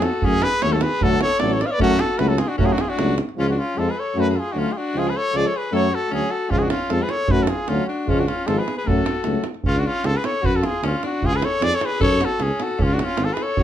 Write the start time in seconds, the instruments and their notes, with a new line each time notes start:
0.02 alto saxophone F#4, trumpet A4, davul high
0.13 davul high
0.22 tuba F#2, trombone F#3, euphonium A3, alto saxophone C#4, trumpet G#4, davul low
0.42 alto saxophone G#4, trumpet B4, davul high
0.52 davul high
0.62 tuba D#2, trombone F#3, euphonium A3, alto saxophone A4, trumpet C#5, davul high
0.72 alto saxophone F#4, trumpet A4, davul high
0.81 alto saxophone G#4, trumpet B4, davul high
1.01 tuba D2, trombone F#3, euphonium A3, alto saxophone F#4, trumpet A4, davul low
1.21 alto saxophone A4, trumpet C#5, davul high
1.32 davul high
1.39 tuba A1, trombone F#3, euphonium A3, alto saxophone A4, trumpet D5, davul high
1.51 trumpet C#5, davul high
1.55 alto saxophone A4
1.61 alto saxophone B4, trumpet D5, davul high
1.66 alto saxophone C#5, trumpet F5
1.71 alto saxophone B4, trumpet D5
1.79 tuba F#2, trombone F#3, euphonium A3, alto saxophone C#4, trumpet F#4, davul low
1.99 alto saxophone F#4, trumpet A4, davul high
2.10 davul high
2.19 tuba C#2, trombone F#3, euphonium A3, alto saxophone F#4, trumpet B4, davul high
2.29 alto saxophone F#4, trumpet A4, davul high
2.38 alto saxophone F4, trumpet G#4, davul high
2.48 alto saxophone D4, trumpet F#4
2.58 tuba F#2, trombone F#3, euphonium A3, alto saxophone C#4, trumpet F#4, davul low
2.66 alto saxophone F4, trumpet G#4, davul high
2.72 alto saxophone D4, trumpet F#4
2.78 alto saxophone F4, trumpet G#4, davul high
2.89 alto saxophone D4, trumpet F#4, davul high
2.97 tuba C#2, trombone F#3, euphonium A3, davul high
3.08 davul high
3.18 davul high
3.29 davul high
3.36 tuba C#2, trombone F3, euphonium G#3, alto saxophone C#4, trumpet F4
3.50 alto saxophone D4, trumpet F#4
3.59 alto saxophone C#4, trumpet F4
3.75 tuba F2, trombone F3, euphonium G#3, trumpet A4
3.80 alto saxophone F4
3.89 alto saxophone G#4, trumpet B4
3.98 alto saxophone A4, trumpet C#5
4.16 tuba F#2, trombone F#3, euphonium A3, alto saxophone F#4
4.20 trumpet B4
4.29 alto saxophone F#4 G#4, trumpet B4
4.34 alto saxophone F4 F#4, trumpet A4
4.40 trumpet G#4
4.52 tuba D2, trombone F#3, euphonium A3, alto saxophone D4, trumpet F#4
4.58 alto saxophone C#4, trumpet F4
4.72 alto saxophone F4, trumpet G#4
4.77 alto saxophone D4, trumpet F#4
4.94 tuba C#2, trombone F3, euphonium G#3, trumpet G#4
4.99 alto saxophone F4
5.07 alto saxophone G#4, trumpet B4
5.17 alto saxophone A4, trumpet C#5
5.33 tuba C#2, trombone F3, euphonium G#3, trumpet D5
5.38 alto saxophone G#4
5.46 alto saxophone A4, trumpet C#5
5.55 alto saxophone G#4, trumpet B4
5.72 tuba F#2, trombone F#3, euphonium A3, alto saxophone A4, trumpet C#5
5.91 alto saxophone F#4, trumpet A4
6.10 tuba D2, trombone F#3, euphonium A3, alto saxophone C#4
6.14 trumpet G#4
6.30 alto saxophone F#4, trumpet A4
6.50 tuba C#2, trombone F3, euphonium G#3, alto saxophone C#4, trumpet F4, davul low
6.57 alto saxophone F4, trumpet G#4
6.62 alto saxophone D4, trumpet F#4, davul high
6.70 alto saxophone C#4, trumpet F4, davul high
6.82 davul high
6.90 tuba F2, trombone F3, euphonium G#3, alto saxophone F4, trumpet A4, davul high
7.02 alto saxophone G#4, trumpet B4
7.09 alto saxophone A4, trumpet C#5, davul high
7.28 tuba F#2, trombone F#3, euphonium A3, alto saxophone F#4, trumpet B4, davul low
7.40 alto saxophone F#4, trumpet A4, davul high
7.47 alto saxophone F4, trumpet G#4, davul high
7.59 davul high
7.68 tuba D2, trombone F#3, euphonium A3, alto saxophone C#4, trumpet F4, davul high
7.86 alto saxophone D4, trumpet F#4
8.07 tuba C#2, trombone F3, euphonium G#3, alto saxophone C#4, trumpet F4, davul low
8.19 alto saxophone D4, trumpet F#4, davul high
8.27 alto saxophone C#4, trumpet F4, davul high
8.46 tuba G#1, trombone F3, euphonium G#3, alto saxophone F4, trumpet A4, davul high
8.58 alto saxophone G#4, trumpet B4
8.68 davul high
8.77 alto saxophone G#4, trumpet B4
8.86 tuba F#2, trombone F#3, euphonium A3, alto saxophone F#4, trumpet A4, davul low
8.98 davul high
9.06 davul high
9.17 davul high
9.24 tuba C#2, trombone F#3, euphonium A3, davul high
9.35 davul high
9.44 davul high
9.54 davul high
9.64 tuba C#2, alto saxophone C#4, trumpet F4, davul low
9.77 alto saxophone D4, trumpet F#4
9.87 alto saxophone C#4, trumpet F4
9.96 davul high
10.04 tuba C#2, alto saxophone F4, trumpet A4, davul high
10.15 alto saxophone G#4, trumpet B4
10.24 alto saxophone A4, trumpet C#5, davul high
10.42 tuba F#2, alto saxophone F#4, trumpet B4, davul low
10.54 alto saxophone F#4, trumpet A4, davul high
10.63 alto saxophone F4, trumpet G#4, davul high
10.74 davul high
10.83 tuba D2, alto saxophone C#4, trumpet F4, davul high
11.03 alto saxophone D4, trumpet F#4, davul high
11.22 tuba C#2, alto saxophone F4, davul low
11.26 trumpet G#4
11.33 alto saxophone G#4, trumpet B4, davul high
11.42 alto saxophone A4, trumpet C#5, davul high
11.61 tuba F2, alto saxophone G#4, trumpet D5, davul high
11.75 alto saxophone A4, trumpet C#5
11.81 alto saxophone G#4, davul high
11.86 trumpet B4
12.01 tuba F#2, alto saxophone A4, trumpet C#5, davul low
12.12 davul high
12.21 alto saxophone F#4, davul high
12.25 trumpet A4
12.31 davul high
12.40 tuba C#2, alto saxophone C#4, trumpet G#4, davul high
12.50 davul high
12.60 alto saxophone F#4, trumpet A4, davul high
12.71 davul high
12.79 tuba C#2, alto saxophone C#4, trumpet F4, davul low
12.90 alto saxophone D4, trumpet F#4, davul high
12.99 alto saxophone C#4, davul high
13.05 trumpet F4
13.09 davul high
13.17 tuba G#1, davul high
13.22 alto saxophone F4, trumpet A4
13.32 alto saxophone G#4, trumpet B4
13.37 davul high
13.42 alto saxophone A4, trumpet C#5
13.57 tuba F#2, alto saxophone F#4, davul low